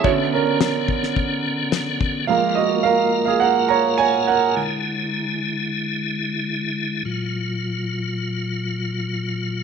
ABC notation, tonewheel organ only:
X:1
M:4/4
L:1/8
Q:1/4=102
K:F#
V:1 name="Tonewheel organ"
[=D,B,C]8 | [A,EA]8 | [=D,G,=E]8 | [A,,F,E]8 |]